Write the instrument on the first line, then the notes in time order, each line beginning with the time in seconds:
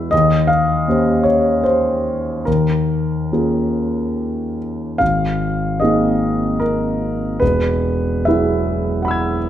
grand piano
Already playing: G#3 E4 F#4 B4 E5
0.11 D#2 D#5
0.47 F5
0.88 A#3 C#4 G4 C5
1.24 C#5
1.64 C5
2.45 D#2 A#4
3.32 A#3 C#4 F4 G#4
4.98 G#1 F5
5.80 A#3 C4 D#4 G#4 D#5
6.60 A#4
7.40 E1 B4
8.25 F#3 B3 E4 G#4 E5
9.02 F#5 B5
9.08 E6 G#6